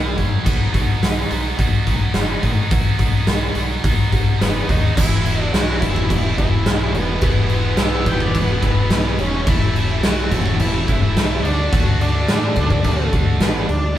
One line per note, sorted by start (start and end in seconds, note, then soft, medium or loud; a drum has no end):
0.00 0.17 B1 medium
0.00 0.43 B2 medium
0.16 0.45 F#2 medium
0.16 0.43 F#3 medium
0.16 kick medium
0.16 open hi-hat soft
0.44 0.67 B1 loud
0.44 0.72 B2 medium
0.44 0.72 F#3 medium
0.44 0.72 B3 medium
0.44 0.72 D#4 medium
0.44 0.73 F#4 medium
0.44 kick loud
0.44 crash loud
0.72 0.95 B1 medium
0.72 1.00 B2 medium
0.72 1.01 F#3 medium
0.72 1.02 B3 medium
0.72 1.02 D#4 medium
0.72 1.03 F#4 loud
0.72 kick medium
0.72 open hi-hat medium
1.01 1.24 B1 medium
1.01 1.30 B2 medium
1.01 1.29 F#3 medium
1.01 1.30 B3 medium
1.01 1.31 D#4 medium
1.01 1.31 F#4 loud
1.01 snare loud
1.01 open hi-hat medium
1.30 1.52 B1 medium
1.30 1.56 B2 medium
1.30 1.57 F#3 medium
1.30 1.59 B3 medium
1.30 1.58 D#4 medium
1.30 1.58 F#4 medium
1.30 open hi-hat medium
1.57 1.80 B1 medium
1.57 1.83 B2 medium
1.57 1.84 F#3 medium
1.57 1.86 B3 loud
1.57 1.85 D#4 loud
1.57 1.85 F#4 loud
1.57 kick loud
1.57 open hi-hat medium
1.84 2.08 B1 medium
1.84 2.11 B2 medium
1.84 2.12 F#3 medium
1.84 2.13 B3 medium
1.84 2.13 D#4 medium
1.84 2.13 F#4 medium
1.84 kick medium
1.84 open hi-hat medium
2.12 2.36 F#1 medium
2.12 2.39 B2 medium
2.12 2.40 F#3 medium
2.12 2.41 B3 medium
2.12 2.41 D#4 medium
2.12 2.41 F#4 medium
2.12 snare medium
2.12 open hi-hat medium
2.41 2.64 A2 medium
2.41 2.68 B2 medium
2.41 2.69 F#3 medium
2.41 2.69 B3 medium
2.41 2.70 D#4 medium
2.41 2.70 F#4 medium
2.41 kick medium
2.41 open hi-hat medium
2.70 2.93 B1 medium
2.70 2.97 B2 medium
2.70 2.98 F#3 medium
2.70 2.97 B3 medium
2.70 2.98 D#4 medium
2.70 2.98 F#4 loud
2.70 kick loud
2.70 open hi-hat medium
2.98 3.21 B1 medium
2.98 3.25 B2 medium
2.98 3.25 F#3 medium
2.98 3.26 B3 medium
2.98 3.27 D#4 medium
2.98 3.26 F#4 medium
2.98 kick medium
2.98 open hi-hat medium
3.26 3.49 B1 medium
3.26 3.54 B2 medium
3.26 3.54 F#3 medium
3.26 3.55 B3 medium
3.26 3.55 D#4 medium
3.26 3.56 F#4 medium
3.26 snare loud
3.26 open hi-hat medium
3.55 3.77 B1 medium
3.55 3.82 B2 medium
3.55 3.83 F#3 medium
3.55 3.84 B3 medium
3.55 3.84 D#4 medium
3.55 3.84 F#4 medium
3.55 open hi-hat medium
3.84 4.06 B1 medium
3.84 4.11 B2 loud
3.84 4.12 F#3 loud
3.84 4.12 B3 loud
3.84 4.12 D#4 loud
3.84 4.12 F#4 medium
3.84 kick loud
3.84 open hi-hat medium
4.12 4.34 B1 medium
4.12 4.38 B2 medium
4.12 4.39 F#3 medium
4.12 4.39 B3 loud
4.12 4.40 D#4 medium
4.12 4.39 F#4 loud
4.12 kick medium
4.12 open hi-hat soft
4.39 4.62 F#1 medium
4.39 4.67 B2 medium
4.39 4.68 F#3 medium
4.39 4.68 B3 medium
4.39 4.70 B3 loud
4.39 4.69 D#4 medium
4.39 4.69 F#4 medium
4.39 snare loud
4.39 open hi-hat medium
4.68 4.90 D#2 medium
4.68 4.95 B2 medium
4.68 4.95 F#3 medium
4.68 4.95 B3 medium
4.68 4.97 D#4 medium
4.68 4.96 D#4 medium
4.68 4.96 F#4 medium
4.68 kick medium
4.68 open hi-hat medium
4.96 5.50 E1 medium
4.96 7.21 E2 loud
4.96 7.21 B2 medium
4.96 7.22 E3 medium
4.96 7.21 G#3 medium
4.96 7.19 B3 medium
4.96 7.22 B3 medium
4.96 7.19 E4 medium
4.96 5.42 E4 loud
4.96 7.20 G#4 medium
4.96 kick loud
4.96 crash loud
4.96 crash medium
5.00 7.23 E4 medium
5.26 crash medium
5.42 5.53 D4 loud
5.53 5.79 B1 medium
5.53 5.80 F#4 loud
5.53 snare loud
5.53 crash medium
5.81 6.08 E1 loud
5.81 6.37 E4 loud
5.81 kick medium
5.81 crash medium
5.96 kick medium
6.10 6.36 E1 medium
6.10 kick loud
6.10 crash medium
6.38 6.64 E1 medium
6.38 6.96 E4 loud
6.38 kick medium
6.38 crash medium
6.66 6.92 B1 loud
6.66 snare loud
6.66 crash medium
6.93 7.19 E1 medium
6.93 8.91 B3 medium
6.93 crash medium
7.21 7.74 E1 medium
7.21 9.45 E2 medium
7.21 9.45 B2 medium
7.21 9.45 E3 medium
7.21 9.46 G#3 medium
7.21 9.46 B3 loud
7.21 9.44 E4 medium
7.21 9.46 E4 medium
7.21 9.44 G#4 medium
7.21 9.44 B4 medium
7.21 kick loud
7.21 crash medium
7.50 crash medium
7.77 8.04 B1 medium
7.77 8.06 E5 medium
7.77 snare loud
7.77 crash medium
8.06 8.32 E1 medium
8.06 8.21 G5 medium
8.06 kick medium
8.06 crash medium
8.20 8.38 D5 medium
8.20 kick medium
8.35 8.60 E1 loud
8.35 8.63 B4 loud
8.35 kick medium
8.35 crash medium
8.63 8.88 E1 medium
8.63 8.91 B4 loud
8.63 kick medium
8.63 crash medium
8.90 9.16 B1 loud
8.90 9.20 B3 loud
8.90 snare loud
8.90 crash medium
9.17 9.44 E1 medium
9.17 9.46 C#4 medium
9.17 crash medium
9.46 9.99 E1 medium
9.46 11.42 E3 loud
9.46 11.42 A3 medium
9.46 11.43 C#4 medium
9.46 11.43 E4 loud
9.46 10.04 E4 loud
9.46 11.43 E4 medium
9.46 11.43 A4 medium
9.46 kick loud
9.46 crash medium
9.76 crash medium
10.01 10.28 B1 loud
10.01 10.56 F#4 loud
10.01 snare loud
10.01 crash medium
10.31 10.57 E1 loud
10.31 kick medium
10.31 crash medium
10.45 kick medium
10.60 10.85 E1 loud
10.60 11.01 E4 medium
10.60 kick medium
10.60 crash medium
10.88 11.14 E1 medium
10.88 kick medium
10.88 crash medium
11.02 11.45 E4 loud
11.15 11.41 B1 medium
11.15 snare loud
11.15 crash medium
11.43 11.69 D2 medium
11.43 13.67 D3 medium
11.43 13.68 A3 medium
11.43 11.72 D4 medium
11.43 13.68 D4 loud
11.43 13.96 D4 medium
11.43 13.68 F#4 loud
11.43 13.96 F#4 medium
11.43 13.96 A4 medium
11.43 crash medium
11.72 12.25 D2 medium
11.72 12.01 F#4 loud
11.72 kick loud
11.72 crash medium
12.01 13.09 D4 medium
12.01 crash medium
12.28 12.54 A2 medium
12.28 snare loud
12.28 crash medium
12.56 12.82 D2 loud
12.56 kick medium
12.56 crash medium
12.70 kick medium
12.84 13.11 D2 medium
12.84 kick medium
12.84 crash medium
13.13 13.39 D2 medium
13.13 kick medium
13.13 crash medium
13.40 13.66 A1 medium
13.40 13.68 B3 loud
13.40 snare loud
13.40 crash medium
13.68 13.95 D2 medium
13.68 13.98 D4 medium
13.68 crash medium